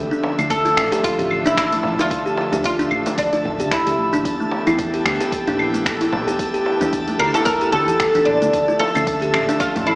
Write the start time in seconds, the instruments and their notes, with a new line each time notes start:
Already playing: analog synth pad D3 F3 A3 E5, synth texture A4 A5
0.11 kalimba D4, shaker
0.23 darbuka ka, darbuka tek
0.38 fretless electric bass D2, kalimba A3, open hi-hat, claves, shaker
0.50 oud A4, kick, open hi-hat, shaker
0.65 kalimba F4, open hi-hat, shaker
0.76 fretless electric bass A1, finger snap, claves
0.92 kalimba G4, open hi-hat, darbuka tek, shaker
1.04 oud F4, kick, open hi-hat, shaker
1.18 fretless electric bass A1, kalimba G4, open hi-hat, darbuka ka, darbuka dum, shaker
1.31 claves
1.46 kalimba D4, oud E4, open hi-hat, shaker
1.57 oud E4, finger snap, kick, open hi-hat, shaker
1.72 kalimba A3, open hi-hat, darbuka ka, shaker
1.83 fretless electric bass A1, darbuka tek
1.99 kalimba F4, oud F4, open hi-hat, darbuka dum, shaker
2.11 kick, open hi-hat, shaker
2.26 kalimba G4, shaker
2.38 darbuka ka, darbuka tek
2.52 fretless electric bass D2, kalimba G4, open hi-hat, darbuka dum, shaker
2.64 oud F4, kick, open hi-hat, shaker
2.79 kalimba D4, open hi-hat, shaker
2.91 fretless electric bass A1, claves
3.06 kalimba A3, open hi-hat, darbuka tek, shaker
3.18 oud D4, kick, open hi-hat, darbuka dum, shaker
3.33 kalimba F4, open hi-hat, shaker
3.45 fretless electric bass A1, darbuka ka, darbuka dum
3.60 fretless electric bass D2, kalimba G4, open hi-hat, shaker
3.71 oud E4, finger snap, kick, open hi-hat, shaker
3.87 fretless electric bass D2, kalimba G4, open hi-hat, shaker
3.99 fretless electric bass A1
4.13 fretless electric bass A1, kalimba D4, open hi-hat, shaker
4.25 fretless electric bass E2, analog synth pad E3 B3 E4 G4, kick, open hi-hat, shaker
4.40 kalimba A3, shaker
4.51 darbuka ka, darbuka tek
4.67 fretless electric bass E2, kalimba E4, open hi-hat, claves, shaker
4.79 kick, open hi-hat, shaker
4.94 kalimba G4, open hi-hat, shaker
5.05 fretless electric bass D2, finger snap, claves
5.21 kalimba G4, open hi-hat, darbuka tek, shaker
5.32 kick, open hi-hat, shaker
5.47 fretless electric bass A#1, kalimba D4, open hi-hat, darbuka ka, darbuka dum, shaker
5.59 claves
5.74 kalimba A3, open hi-hat, shaker
5.86 finger snap, kick, open hi-hat, shaker
6.01 kalimba E4, open hi-hat, darbuka ka, shaker
6.13 fretless electric bass A#1, darbuka tek
6.27 kalimba G4, open hi-hat, darbuka dum, shaker
6.39 kick, open hi-hat, shaker
6.54 kalimba G4, open hi-hat, shaker
6.66 darbuka ka, darbuka tek
6.81 fretless electric bass E2, kalimba D4, open hi-hat, darbuka ka, darbuka dum, shaker
6.93 kick, open hi-hat, shaker
7.08 kalimba A3, open hi-hat, shaker
7.19 fretless electric bass D2, oud A#4, claves
7.34 kalimba E4, oud A4, open hi-hat, darbuka tek, shaker
7.45 oud A#4, kick, open hi-hat, darbuka dum, shaker
7.61 kalimba G4, open hi-hat, shaker
7.72 fretless electric bass D2, oud A4, darbuka ka, darbuka dum
7.88 fretless electric bass E2, kalimba G4, open hi-hat, shaker
8.00 finger snap, kick, open hi-hat, shaker
8.15 fretless electric bass E2, kalimba D4, open hi-hat, shaker
8.25 fretless electric bass A#1, oud D4
8.42 fretless electric bass D2, kalimba A3, open hi-hat, shaker
8.53 fretless electric bass D2, analog synth pad D3 F3 A3 E5, kick, open hi-hat, shaker
8.68 kalimba F4, shaker
8.79 oud A4, darbuka ka, darbuka tek
8.95 fretless electric bass D2, kalimba C#4, open hi-hat, claves, shaker
9.07 kick, open hi-hat, shaker
9.22 kalimba G4, open hi-hat, shaker
9.34 fretless electric bass A1, finger snap, claves
9.48 kalimba D4, open hi-hat, darbuka tek, shaker
9.60 oud F4, kick, open hi-hat, shaker
9.75 fretless electric bass A1, kalimba A3, open hi-hat, darbuka ka, darbuka dum, shaker
9.87 oud E4, claves